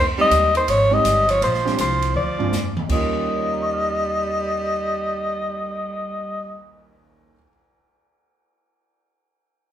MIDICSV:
0, 0, Header, 1, 7, 480
1, 0, Start_track
1, 0, Tempo, 368324
1, 1844, Time_signature, 4, 2, 24, 8
1, 12668, End_track
2, 0, Start_track
2, 0, Title_t, "Alto saxophone"
2, 0, Program_c, 0, 65
2, 274, Note_on_c, 0, 75, 101
2, 701, Note_off_c, 0, 75, 0
2, 745, Note_on_c, 0, 72, 91
2, 910, Note_on_c, 0, 73, 93
2, 930, Note_off_c, 0, 72, 0
2, 1219, Note_on_c, 0, 75, 88
2, 1239, Note_off_c, 0, 73, 0
2, 1697, Note_on_c, 0, 73, 81
2, 1717, Note_off_c, 0, 75, 0
2, 1857, Note_off_c, 0, 73, 0
2, 1871, Note_on_c, 0, 72, 82
2, 2305, Note_off_c, 0, 72, 0
2, 2356, Note_on_c, 0, 72, 79
2, 2787, Note_off_c, 0, 72, 0
2, 2818, Note_on_c, 0, 74, 77
2, 3547, Note_off_c, 0, 74, 0
2, 3806, Note_on_c, 0, 75, 75
2, 8616, Note_off_c, 0, 75, 0
2, 12668, End_track
3, 0, Start_track
3, 0, Title_t, "Grand piano"
3, 0, Program_c, 1, 0
3, 227, Note_on_c, 1, 56, 58
3, 231, Note_on_c, 1, 60, 56
3, 238, Note_on_c, 1, 67, 59
3, 242, Note_on_c, 1, 63, 54
3, 385, Note_off_c, 1, 56, 0
3, 387, Note_off_c, 1, 60, 0
3, 390, Note_off_c, 1, 67, 0
3, 392, Note_off_c, 1, 63, 0
3, 1179, Note_on_c, 1, 56, 67
3, 1180, Note_on_c, 1, 60, 59
3, 1188, Note_on_c, 1, 63, 60
3, 1195, Note_on_c, 1, 67, 65
3, 1340, Note_off_c, 1, 56, 0
3, 1341, Note_off_c, 1, 60, 0
3, 1345, Note_off_c, 1, 63, 0
3, 1349, Note_off_c, 1, 67, 0
3, 2151, Note_on_c, 1, 56, 69
3, 2152, Note_on_c, 1, 62, 61
3, 2154, Note_on_c, 1, 60, 64
3, 2154, Note_on_c, 1, 67, 75
3, 2307, Note_off_c, 1, 56, 0
3, 2307, Note_off_c, 1, 62, 0
3, 2308, Note_off_c, 1, 60, 0
3, 2308, Note_off_c, 1, 67, 0
3, 3107, Note_on_c, 1, 56, 65
3, 3109, Note_on_c, 1, 62, 60
3, 3110, Note_on_c, 1, 60, 53
3, 3118, Note_on_c, 1, 65, 67
3, 3265, Note_off_c, 1, 56, 0
3, 3266, Note_off_c, 1, 60, 0
3, 3266, Note_off_c, 1, 62, 0
3, 3270, Note_off_c, 1, 65, 0
3, 3763, Note_on_c, 1, 39, 57
3, 3763, Note_on_c, 1, 51, 50
3, 3766, Note_on_c, 1, 55, 51
3, 3784, Note_on_c, 1, 58, 52
3, 3786, Note_on_c, 1, 61, 53
3, 3797, Note_on_c, 1, 65, 61
3, 4266, Note_on_c, 1, 70, 39
3, 4364, Note_on_c, 1, 73, 40
3, 4589, Note_on_c, 1, 82, 36
3, 4718, Note_on_c, 1, 85, 35
3, 4867, Note_on_c, 1, 89, 32
3, 5011, Note_on_c, 1, 94, 29
3, 9518, Note_off_c, 1, 70, 0
3, 9559, Note_off_c, 1, 39, 0
3, 9559, Note_off_c, 1, 51, 0
3, 9561, Note_off_c, 1, 55, 0
3, 9567, Note_off_c, 1, 73, 0
3, 9569, Note_off_c, 1, 58, 0
3, 9571, Note_off_c, 1, 61, 0
3, 9576, Note_off_c, 1, 65, 0
3, 9680, Note_off_c, 1, 82, 0
3, 9744, Note_off_c, 1, 85, 0
3, 9819, Note_off_c, 1, 89, 0
3, 9891, Note_off_c, 1, 94, 0
3, 12668, End_track
4, 0, Start_track
4, 0, Title_t, "Tenor saxophone"
4, 0, Program_c, 2, 66
4, 230, Note_on_c, 2, 55, 81
4, 677, Note_off_c, 2, 55, 0
4, 704, Note_on_c, 2, 51, 72
4, 867, Note_on_c, 2, 53, 70
4, 887, Note_off_c, 2, 51, 0
4, 1203, Note_on_c, 2, 55, 80
4, 1222, Note_off_c, 2, 53, 0
4, 1660, Note_on_c, 2, 53, 73
4, 1680, Note_off_c, 2, 55, 0
4, 1831, Note_off_c, 2, 53, 0
4, 1838, Note_on_c, 2, 53, 73
4, 2288, Note_off_c, 2, 53, 0
4, 2313, Note_on_c, 2, 53, 66
4, 2765, Note_off_c, 2, 53, 0
4, 2793, Note_on_c, 2, 53, 66
4, 3534, Note_off_c, 2, 53, 0
4, 3748, Note_on_c, 2, 55, 71
4, 8587, Note_off_c, 2, 55, 0
4, 12668, End_track
5, 0, Start_track
5, 0, Title_t, "Upright bass"
5, 0, Program_c, 3, 32
5, 0, Note_on_c, 3, 41, 76
5, 392, Note_off_c, 3, 41, 0
5, 404, Note_on_c, 3, 39, 83
5, 870, Note_off_c, 3, 39, 0
5, 887, Note_on_c, 3, 32, 80
5, 1351, Note_off_c, 3, 32, 0
5, 1363, Note_on_c, 3, 31, 78
5, 1829, Note_off_c, 3, 31, 0
5, 1842, Note_on_c, 3, 34, 84
5, 2309, Note_off_c, 3, 34, 0
5, 2323, Note_on_c, 3, 36, 86
5, 2779, Note_off_c, 3, 36, 0
5, 2787, Note_on_c, 3, 38, 79
5, 3261, Note_off_c, 3, 38, 0
5, 3277, Note_on_c, 3, 41, 77
5, 3746, Note_off_c, 3, 41, 0
5, 3768, Note_on_c, 3, 39, 76
5, 9510, Note_off_c, 3, 39, 0
5, 12668, End_track
6, 0, Start_track
6, 0, Title_t, "Cymbal swell"
6, 4082, Note_on_c, 9, 59, 40
6, 7506, Note_off_c, 9, 59, 0
6, 12668, End_track
7, 0, Start_track
7, 0, Title_t, "Drums"
7, 408, Note_on_c, 9, 36, 18
7, 408, Note_on_c, 9, 44, 53
7, 408, Note_on_c, 9, 51, 61
7, 538, Note_off_c, 9, 36, 0
7, 538, Note_off_c, 9, 44, 0
7, 538, Note_off_c, 9, 51, 0
7, 715, Note_on_c, 9, 51, 43
7, 845, Note_off_c, 9, 51, 0
7, 886, Note_on_c, 9, 51, 62
7, 887, Note_on_c, 9, 36, 18
7, 1016, Note_off_c, 9, 51, 0
7, 1017, Note_off_c, 9, 36, 0
7, 1365, Note_on_c, 9, 44, 59
7, 1365, Note_on_c, 9, 51, 58
7, 1366, Note_on_c, 9, 36, 23
7, 1496, Note_off_c, 9, 44, 0
7, 1496, Note_off_c, 9, 51, 0
7, 1497, Note_off_c, 9, 36, 0
7, 1677, Note_on_c, 9, 51, 47
7, 1807, Note_off_c, 9, 51, 0
7, 1847, Note_on_c, 9, 36, 23
7, 1852, Note_on_c, 9, 51, 55
7, 1977, Note_off_c, 9, 36, 0
7, 1982, Note_off_c, 9, 51, 0
7, 2006, Note_on_c, 9, 38, 27
7, 2136, Note_off_c, 9, 38, 0
7, 2168, Note_on_c, 9, 38, 40
7, 2298, Note_off_c, 9, 38, 0
7, 2326, Note_on_c, 9, 44, 60
7, 2326, Note_on_c, 9, 51, 59
7, 2327, Note_on_c, 9, 36, 22
7, 2456, Note_off_c, 9, 44, 0
7, 2456, Note_off_c, 9, 51, 0
7, 2457, Note_off_c, 9, 36, 0
7, 2636, Note_on_c, 9, 51, 39
7, 2767, Note_off_c, 9, 51, 0
7, 2810, Note_on_c, 9, 47, 43
7, 2941, Note_off_c, 9, 47, 0
7, 3128, Note_on_c, 9, 43, 62
7, 3259, Note_off_c, 9, 43, 0
7, 3291, Note_on_c, 9, 38, 55
7, 3293, Note_on_c, 9, 44, 55
7, 3422, Note_off_c, 9, 38, 0
7, 3423, Note_off_c, 9, 44, 0
7, 3606, Note_on_c, 9, 47, 74
7, 3737, Note_off_c, 9, 47, 0
7, 3772, Note_on_c, 9, 36, 49
7, 3772, Note_on_c, 9, 49, 56
7, 3902, Note_off_c, 9, 49, 0
7, 3903, Note_off_c, 9, 36, 0
7, 12668, End_track
0, 0, End_of_file